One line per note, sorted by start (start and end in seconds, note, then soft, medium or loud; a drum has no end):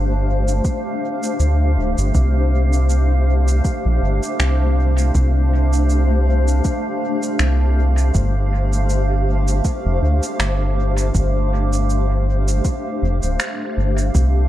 0.00 0.61 G1 medium
0.00 14.49 A3 medium
0.00 14.49 D4 medium
0.00 14.49 G4 medium
0.00 14.49 C5 medium
0.00 14.49 F5 medium
0.48 shaker soft
0.65 kick loud
0.65 shaker soft
1.23 shaker soft
1.40 1.78 D2 medium
1.40 shaker soft
1.77 1.95 D1 medium
1.98 2.13 G1 medium
1.98 shaker soft
2.15 3.61 C2 medium
2.15 kick medium
2.15 shaker soft
2.73 shaker soft
2.90 shaker soft
3.48 shaker soft
3.65 kick loud
3.65 shaker soft
3.85 4.00 A#1 loud
4.02 4.21 G1 medium
4.23 shaker soft
4.39 5.11 C2 medium
4.39 finger snap medium
4.39 shaker soft
4.98 shaker soft
5.15 6.62 C2 medium
5.15 kick medium
5.15 shaker soft
5.73 shaker soft
5.90 shaker soft
6.48 shaker soft
6.64 kick loud
6.64 shaker soft
7.23 shaker soft
7.39 8.11 C2 loud
7.39 finger snap medium
7.39 shaker soft
7.98 shaker soft
8.14 9.62 G1 medium
8.14 kick medium
8.14 shaker soft
8.73 shaker soft
8.90 shaker soft
9.48 shaker soft
9.65 kick loud
9.65 shaker soft
9.85 10.00 F1 loud
10.02 10.21 D2 medium
10.23 shaker soft
10.39 11.11 G1 medium
10.39 finger snap medium
10.39 shaker soft
10.98 shaker soft
11.15 12.61 G1 medium
11.15 kick loud
11.15 shaker soft
11.73 shaker soft
11.90 shaker soft
12.48 shaker soft
12.65 kick loud
12.65 shaker soft
13.02 13.21 F1 medium
13.23 13.38 D1 medium
13.23 shaker soft
13.40 finger snap medium
13.40 shaker soft
13.77 14.11 G1 medium
13.98 shaker soft
14.15 14.49 C2 loud
14.15 kick loud
14.15 shaker soft